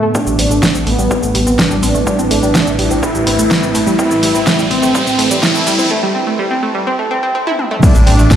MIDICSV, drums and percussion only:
0, 0, Header, 1, 2, 480
1, 0, Start_track
1, 0, Key_signature, 0, "minor"
1, 0, Tempo, 480000
1, 149, Time_signature, 4, 2, 24, 8
1, 8363, End_track
2, 0, Start_track
2, 0, Title_t, "Drums"
2, 148, Note_on_c, 9, 36, 113
2, 148, Note_on_c, 9, 82, 67
2, 248, Note_off_c, 9, 36, 0
2, 248, Note_off_c, 9, 82, 0
2, 269, Note_on_c, 9, 82, 48
2, 369, Note_off_c, 9, 82, 0
2, 388, Note_on_c, 9, 46, 107
2, 388, Note_on_c, 9, 82, 30
2, 489, Note_off_c, 9, 46, 0
2, 489, Note_off_c, 9, 82, 0
2, 510, Note_on_c, 9, 82, 47
2, 610, Note_off_c, 9, 82, 0
2, 628, Note_on_c, 9, 36, 108
2, 629, Note_on_c, 9, 38, 114
2, 629, Note_on_c, 9, 82, 65
2, 728, Note_off_c, 9, 36, 0
2, 729, Note_off_c, 9, 38, 0
2, 729, Note_off_c, 9, 82, 0
2, 749, Note_on_c, 9, 82, 45
2, 849, Note_off_c, 9, 82, 0
2, 868, Note_on_c, 9, 46, 82
2, 968, Note_off_c, 9, 46, 0
2, 990, Note_on_c, 9, 82, 46
2, 1090, Note_off_c, 9, 82, 0
2, 1108, Note_on_c, 9, 36, 117
2, 1109, Note_on_c, 9, 82, 62
2, 1208, Note_off_c, 9, 36, 0
2, 1209, Note_off_c, 9, 82, 0
2, 1230, Note_on_c, 9, 82, 45
2, 1330, Note_off_c, 9, 82, 0
2, 1349, Note_on_c, 9, 46, 110
2, 1449, Note_off_c, 9, 46, 0
2, 1470, Note_on_c, 9, 82, 62
2, 1570, Note_off_c, 9, 82, 0
2, 1588, Note_on_c, 9, 36, 122
2, 1590, Note_on_c, 9, 38, 123
2, 1590, Note_on_c, 9, 82, 46
2, 1688, Note_off_c, 9, 36, 0
2, 1690, Note_off_c, 9, 38, 0
2, 1690, Note_off_c, 9, 82, 0
2, 1710, Note_on_c, 9, 82, 47
2, 1810, Note_off_c, 9, 82, 0
2, 1829, Note_on_c, 9, 46, 91
2, 1829, Note_on_c, 9, 82, 54
2, 1929, Note_off_c, 9, 46, 0
2, 1929, Note_off_c, 9, 82, 0
2, 1949, Note_on_c, 9, 82, 46
2, 2049, Note_off_c, 9, 82, 0
2, 2068, Note_on_c, 9, 36, 114
2, 2069, Note_on_c, 9, 82, 63
2, 2168, Note_off_c, 9, 36, 0
2, 2169, Note_off_c, 9, 82, 0
2, 2190, Note_on_c, 9, 82, 44
2, 2290, Note_off_c, 9, 82, 0
2, 2309, Note_on_c, 9, 46, 110
2, 2309, Note_on_c, 9, 82, 30
2, 2409, Note_off_c, 9, 46, 0
2, 2409, Note_off_c, 9, 82, 0
2, 2430, Note_on_c, 9, 82, 47
2, 2530, Note_off_c, 9, 82, 0
2, 2548, Note_on_c, 9, 36, 117
2, 2549, Note_on_c, 9, 38, 111
2, 2549, Note_on_c, 9, 82, 60
2, 2648, Note_off_c, 9, 36, 0
2, 2649, Note_off_c, 9, 38, 0
2, 2649, Note_off_c, 9, 82, 0
2, 2670, Note_on_c, 9, 82, 43
2, 2770, Note_off_c, 9, 82, 0
2, 2789, Note_on_c, 9, 46, 92
2, 2889, Note_off_c, 9, 46, 0
2, 2910, Note_on_c, 9, 82, 46
2, 3010, Note_off_c, 9, 82, 0
2, 3028, Note_on_c, 9, 36, 123
2, 3030, Note_on_c, 9, 82, 62
2, 3128, Note_off_c, 9, 36, 0
2, 3130, Note_off_c, 9, 82, 0
2, 3150, Note_on_c, 9, 82, 42
2, 3250, Note_off_c, 9, 82, 0
2, 3269, Note_on_c, 9, 46, 117
2, 3369, Note_off_c, 9, 46, 0
2, 3390, Note_on_c, 9, 82, 66
2, 3490, Note_off_c, 9, 82, 0
2, 3508, Note_on_c, 9, 36, 120
2, 3509, Note_on_c, 9, 38, 127
2, 3509, Note_on_c, 9, 82, 45
2, 3608, Note_off_c, 9, 36, 0
2, 3609, Note_off_c, 9, 38, 0
2, 3609, Note_off_c, 9, 82, 0
2, 3630, Note_on_c, 9, 82, 45
2, 3730, Note_off_c, 9, 82, 0
2, 3749, Note_on_c, 9, 46, 99
2, 3749, Note_on_c, 9, 82, 49
2, 3849, Note_off_c, 9, 46, 0
2, 3849, Note_off_c, 9, 82, 0
2, 3869, Note_on_c, 9, 82, 45
2, 3969, Note_off_c, 9, 82, 0
2, 3988, Note_on_c, 9, 36, 123
2, 3989, Note_on_c, 9, 82, 63
2, 4088, Note_off_c, 9, 36, 0
2, 4089, Note_off_c, 9, 82, 0
2, 4110, Note_on_c, 9, 82, 45
2, 4209, Note_off_c, 9, 82, 0
2, 4229, Note_on_c, 9, 46, 112
2, 4229, Note_on_c, 9, 82, 30
2, 4329, Note_off_c, 9, 46, 0
2, 4329, Note_off_c, 9, 82, 0
2, 4349, Note_on_c, 9, 82, 44
2, 4449, Note_off_c, 9, 82, 0
2, 4468, Note_on_c, 9, 36, 127
2, 4469, Note_on_c, 9, 38, 115
2, 4469, Note_on_c, 9, 82, 61
2, 4568, Note_off_c, 9, 36, 0
2, 4569, Note_off_c, 9, 38, 0
2, 4569, Note_off_c, 9, 82, 0
2, 4589, Note_on_c, 9, 82, 44
2, 4689, Note_off_c, 9, 82, 0
2, 4709, Note_on_c, 9, 46, 92
2, 4809, Note_off_c, 9, 46, 0
2, 4829, Note_on_c, 9, 82, 46
2, 4929, Note_off_c, 9, 82, 0
2, 4948, Note_on_c, 9, 36, 127
2, 4949, Note_on_c, 9, 82, 62
2, 5048, Note_off_c, 9, 36, 0
2, 5049, Note_off_c, 9, 82, 0
2, 5070, Note_on_c, 9, 82, 43
2, 5170, Note_off_c, 9, 82, 0
2, 5189, Note_on_c, 9, 46, 115
2, 5289, Note_off_c, 9, 46, 0
2, 5310, Note_on_c, 9, 82, 62
2, 5410, Note_off_c, 9, 82, 0
2, 5429, Note_on_c, 9, 36, 127
2, 5429, Note_on_c, 9, 38, 126
2, 5429, Note_on_c, 9, 82, 46
2, 5529, Note_off_c, 9, 36, 0
2, 5529, Note_off_c, 9, 38, 0
2, 5529, Note_off_c, 9, 82, 0
2, 5549, Note_on_c, 9, 82, 43
2, 5649, Note_off_c, 9, 82, 0
2, 5669, Note_on_c, 9, 46, 92
2, 5669, Note_on_c, 9, 82, 52
2, 5769, Note_off_c, 9, 46, 0
2, 5769, Note_off_c, 9, 82, 0
2, 5789, Note_on_c, 9, 82, 41
2, 5889, Note_off_c, 9, 82, 0
2, 7470, Note_on_c, 9, 48, 54
2, 7570, Note_off_c, 9, 48, 0
2, 7590, Note_on_c, 9, 47, 79
2, 7690, Note_off_c, 9, 47, 0
2, 7710, Note_on_c, 9, 45, 75
2, 7810, Note_off_c, 9, 45, 0
2, 7829, Note_on_c, 9, 36, 118
2, 7830, Note_on_c, 9, 49, 100
2, 7830, Note_on_c, 9, 82, 71
2, 7929, Note_off_c, 9, 36, 0
2, 7930, Note_off_c, 9, 49, 0
2, 7930, Note_off_c, 9, 82, 0
2, 7950, Note_on_c, 9, 82, 50
2, 8050, Note_off_c, 9, 82, 0
2, 8070, Note_on_c, 9, 46, 108
2, 8170, Note_off_c, 9, 46, 0
2, 8190, Note_on_c, 9, 82, 47
2, 8290, Note_off_c, 9, 82, 0
2, 8309, Note_on_c, 9, 36, 117
2, 8310, Note_on_c, 9, 38, 118
2, 8310, Note_on_c, 9, 82, 63
2, 8363, Note_off_c, 9, 36, 0
2, 8363, Note_off_c, 9, 38, 0
2, 8363, Note_off_c, 9, 82, 0
2, 8363, End_track
0, 0, End_of_file